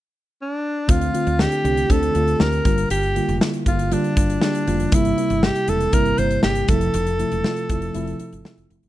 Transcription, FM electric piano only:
0.88 D3 A3 C4 F4
1.13 D3 A3 C4 F4
1.39 D3 A3 C4 D4
1.64 D3 A3 C4 G4
1.89 D3 A3 C4 D4
2.14 D3 A3 C4 F4
2.39 D3 A3 C4 G4
2.65 D3 G3 A#3 F4
3.15 D3 G3 A#3 F4
3.40 D3 G3 A#3 E4
3.66 D3 G3 A#3 F4
3.91 D3 G3 A#3 F4
4.16 D3 G3 A#3 F4
4.41 D3 G3 A#3 G4
4.67 D3 G3 A#3 F4
4.92 C3 G3 A#3 E4
5.17 C3 G3 A#3 E4
5.43 C3 G3 A#3 E4
5.68 C3 G3 A#3 E4
5.92 C3 G3 A#3 E4
6.18 C3 G3 A#3 E4
6.43 C3 G3 A#3 G4
6.68 C3 F3 A3 E4
7.19 C3 F3 A3 E4
7.44 C3 F3 A3 F4
7.69 C3 F3 A3 E4
7.94 C3 F3 A3 E4
8.19 C3 F3 A3 E4
8.45 C3 F3 A3 E4
8.70 C3 F3 A3 E4

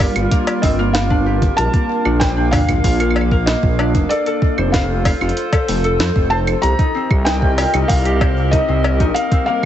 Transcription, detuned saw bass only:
0.16 G1
0.63 G1
1.58 A#1
2.05 A#1
2.68 A#1
2.84 A#1
3.63 A#1
3.95 F1
4.58 F1
5.21 F1
5.68 F1
6.00 F2
6.16 F1
6.63 C2
7.10 C2
7.74 C2
7.89 C2
8.68 C2
9.00 A#1

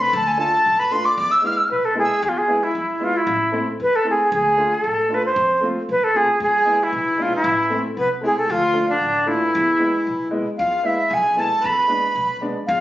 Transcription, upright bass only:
0.13 D2
0.66 A1
1.17 E2
1.70 B1
2.22 E2
2.75 E2
3.27 A1
3.80 E2
4.32 D2
4.84 A1
5.36 F2
5.89 B1
6.40 E2
6.93 B1
7.44 A1
7.97 C2
8.49 D2
9.01 A1
9.55 E2
10.07 B1
10.59 E2
11.11 B1
11.64 E2
12.15 B1
12.68 E2

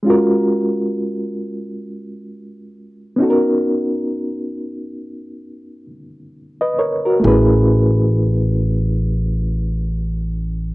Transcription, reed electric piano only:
0.03 G#3 C#4 F4
0.08 F#4 A#4
3.16 B3 C#4 D#4
3.22 F#4 A4
3.30 A#4
6.61 B4 D#5
6.79 A#4 C#5
7.05 F#4 A#4
7.20 A3 B3 E4
7.25 C#4 G#4 B4

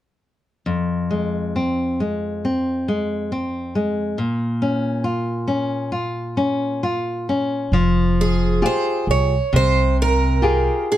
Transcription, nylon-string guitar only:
0.66 F2
1.11 G#3
1.56 C4
2.00 G#3
2.45 C4
2.88 G#3
3.32 C4
3.75 G#3
4.18 A#2
4.62 C#4
5.04 F4
5.48 C#4
5.92 F4
6.37 C#4
6.83 F4
7.29 C#4
7.73 F3
8.62 F4 G4 G#4
9.53 C3
10.42 F4 G4 G#4

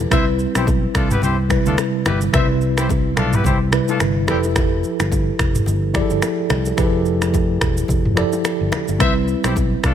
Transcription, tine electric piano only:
Already playing: F3 E4 G4 A4 B4
0.10 G3 C4 E4 B4
1.49 C3 G3 E4 B4
2.32 C3 G3 E4 B4
3.71 C3 G3 E4 B4
4.27 F3 E4 G4 A4 B4
5.93 F3 E4 G4 G#4 D5
6.02 A4
6.76 F3 E4 G4 G#4 B4
6.85 A4
8.16 F3 E4 G4 A4 D5
8.99 G3 C4 E4 B4

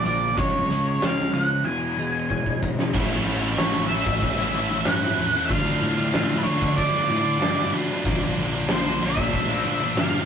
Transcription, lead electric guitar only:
0.05 D5
0.38 C#5
1.05 F5
1.34 F#5
1.65 G#5
3.57 C#5
3.86 E5
4.81 F#5
5.46 F5
6.38 B4
6.43 C#5
6.77 D5
8.72 C5
9.04 E5
9.98 F5

